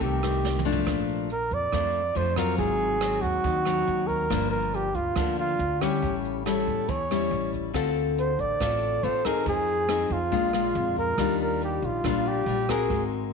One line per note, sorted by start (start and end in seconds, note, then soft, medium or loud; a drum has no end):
0.00 0.83 C2 medium
0.00 0.85 C3 medium
0.00 0.19 D#3 medium
0.00 0.19 A3 medium
0.00 0.20 C4 medium
0.00 0.62 G4 medium
0.00 kick medium
0.00 closed hi-hat soft
0.23 0.62 D#3 soft
0.23 0.62 A3 medium
0.23 0.62 C4 medium
0.23 cross-stick soft
0.23 closed hi-hat soft
0.45 snare soft
0.59 mid tom soft
0.65 1.28 F3 medium
0.65 1.28 A3 medium
0.65 1.28 D4 medium
0.72 floor tom medium
0.86 1.47 A#1 medium
0.86 1.70 A#2 soft
0.86 kick medium
0.86 cross-stick medium
0.86 closed hi-hat soft
1.08 closed hi-hat soft
1.30 1.55 A#4 medium
1.30 closed hi-hat soft
1.51 1.71 F2 medium
1.51 2.18 D5 medium
1.51 kick soft
1.51 closed hi-hat soft
1.72 2.13 F2 medium
1.72 2.57 F2 medium
1.72 2.01 F3 soft
1.72 2.01 A3 soft
1.72 2.01 D4 medium
1.72 kick medium
1.72 cross-stick medium
1.72 closed hi-hat soft
1.94 closed hi-hat soft
2.15 2.56 F2 medium
2.15 2.34 F3 soft
2.15 2.34 A3 soft
2.15 2.34 D4 medium
2.15 2.39 C5 medium
2.15 closed hi-hat soft
2.36 2.98 F#3 medium
2.36 2.98 C4 medium
2.36 2.98 F4 medium
2.36 2.58 A#4 medium
2.36 kick soft
2.36 cross-stick medium
2.36 closed hi-hat soft
2.58 3.19 G#1 medium
2.58 3.43 G#2 medium
2.58 3.23 G#4 medium
2.58 kick medium
2.58 closed hi-hat soft
2.80 closed hi-hat soft
3.01 3.62 F#3 medium
3.01 3.63 C4 medium
3.01 cross-stick medium
3.01 closed hi-hat soft
3.21 3.43 D#2 medium
3.21 4.08 F#4 medium
3.21 kick soft
3.21 closed hi-hat soft
3.44 3.84 D#2 medium
3.44 4.28 D#3 medium
3.44 kick medium
3.44 closed hi-hat soft
3.65 4.27 F#3 medium
3.65 4.27 C4 medium
3.65 cross-stick soft
3.65 closed hi-hat soft
3.87 4.27 D#2 medium
3.87 closed hi-hat soft
4.07 4.50 A#4 medium
4.07 kick soft
4.07 closed hi-hat soft
4.30 4.91 G1 medium
4.30 5.14 G2 medium
4.30 4.88 F3 medium
4.30 4.88 A#3 soft
4.30 4.88 D4 medium
4.30 kick medium
4.30 cross-stick medium
4.30 closed hi-hat soft
4.51 4.76 A#4 medium
4.51 closed hi-hat soft
4.74 4.96 G4 medium
4.74 closed hi-hat soft
4.95 5.15 D2 medium
4.95 5.38 F4 medium
4.95 kick soft
4.95 closed hi-hat soft
5.16 5.56 D2 medium
5.16 6.00 D3 medium
5.16 5.59 F3 medium
5.16 5.59 A#3 medium
5.16 5.59 D4 medium
5.16 kick medium
5.16 cross-stick medium
5.16 closed hi-hat soft
5.38 5.82 F4 medium
5.38 closed hi-hat soft
5.59 5.99 D2 medium
5.59 closed hi-hat soft
5.81 6.42 G3 medium
5.81 6.42 C#4 medium
5.81 6.43 E4 medium
5.81 6.18 G4 medium
5.81 kick soft
5.81 cross-stick medium
5.81 closed hi-hat soft
6.02 6.63 A1 medium
6.02 6.86 A2 soft
6.02 kick soft
6.02 closed hi-hat soft
6.24 closed hi-hat soft
6.46 6.88 G3 soft
6.46 6.88 C#4 medium
6.46 6.89 E4 medium
6.46 6.91 A4 medium
6.46 cross-stick medium
6.46 closed hi-hat soft
6.67 6.87 E2 medium
6.67 kick soft
6.67 closed hi-hat soft
6.88 7.29 E2 medium
6.88 7.72 E3 medium
6.88 7.53 C#5 medium
6.88 kick medium
6.88 closed hi-hat soft
7.11 7.71 G3 soft
7.11 7.72 C#4 soft
7.11 7.72 E4 medium
7.11 cross-stick soft
7.11 closed hi-hat soft
7.31 7.71 A1 medium
7.31 closed hi-hat soft
7.53 kick soft
7.53 closed hi-hat soft
7.74 8.35 D2 medium
7.74 8.58 D3 soft
7.74 8.32 C4 medium
7.74 8.32 F4 soft
7.74 8.32 A4 medium
7.74 kick medium
7.74 cross-stick medium
7.74 closed hi-hat soft
7.96 closed hi-hat soft
8.18 8.42 C5 medium
8.18 closed hi-hat soft
8.39 8.59 A1 medium
8.39 9.05 D5 medium
8.39 kick soft
8.39 closed hi-hat soft
8.60 9.00 A1 medium
8.60 9.44 A2 soft
8.60 9.00 C4 medium
8.60 9.00 F4 soft
8.60 9.00 A4 medium
8.60 kick medium
8.60 cross-stick medium
8.60 closed hi-hat soft
8.82 closed hi-hat soft
9.03 9.43 A1 medium
9.03 9.21 C4 soft
9.03 9.22 F4 soft
9.03 9.22 A4 medium
9.03 9.27 C5 medium
9.03 closed hi-hat soft
9.25 9.86 C4 medium
9.25 9.86 D#4 medium
9.25 9.86 G#4 medium
9.25 9.47 A#4 medium
9.25 kick soft
9.25 cross-stick medium
9.25 closed hi-hat soft
9.46 10.07 F2 medium
9.46 10.30 F3 medium
9.46 10.14 G#4 medium
9.46 kick soft
9.46 closed hi-hat soft
9.68 closed hi-hat soft
9.88 10.18 C4 medium
9.88 10.18 D#4 soft
9.88 10.18 G#4 medium
9.88 cross-stick medium
9.88 closed hi-hat soft
10.10 10.30 F2 medium
10.10 10.97 F4 medium
10.10 kick soft
10.10 closed hi-hat soft
10.32 10.72 A#1 medium
10.32 11.16 A#2 medium
10.32 10.50 G#3 medium
10.32 10.50 D4 medium
10.32 10.50 F4 medium
10.32 kick medium
10.32 closed hi-hat soft
10.53 11.15 G#3 medium
10.53 11.15 D4 medium
10.53 11.15 F4 medium
10.53 cross-stick soft
10.53 closed hi-hat soft
10.75 11.15 F2 medium
10.75 closed hi-hat soft
10.96 11.37 A#4 medium
10.96 kick soft
10.96 closed hi-hat soft
11.18 11.78 D#2 medium
11.18 12.02 D#3 medium
11.18 12.01 G3 medium
11.18 12.01 D4 medium
11.18 12.01 F4 medium
11.18 kick medium
11.18 cross-stick medium
11.18 closed hi-hat soft
11.40 11.61 A#4 medium
11.40 closed hi-hat soft
11.61 11.87 G4 medium
11.61 closed hi-hat soft
11.82 12.02 A#1 medium
11.82 12.29 F4 medium
11.82 kick soft
11.82 closed hi-hat soft
12.04 12.44 A#1 medium
12.04 12.88 A#2 medium
12.04 12.44 G3 medium
12.04 12.44 D4 medium
12.04 12.44 F4 medium
12.04 kick medium
12.04 cross-stick medium
12.04 closed hi-hat soft
12.27 12.72 G4 medium
12.27 closed hi-hat soft
12.46 12.87 A#1 medium
12.46 12.65 G3 soft
12.46 12.65 D4 soft
12.46 12.66 F4 soft
12.46 closed hi-hat soft
12.69 13.30 C4 medium
12.69 13.30 F#4 medium
12.69 13.07 G#4 medium
12.69 13.30 A#4 medium
12.69 kick soft
12.69 cross-stick medium
12.69 closed hi-hat soft
12.90 13.33 G#1 medium
12.90 13.33 G#3 medium
12.90 kick medium
12.90 closed hi-hat soft
13.12 closed hi-hat soft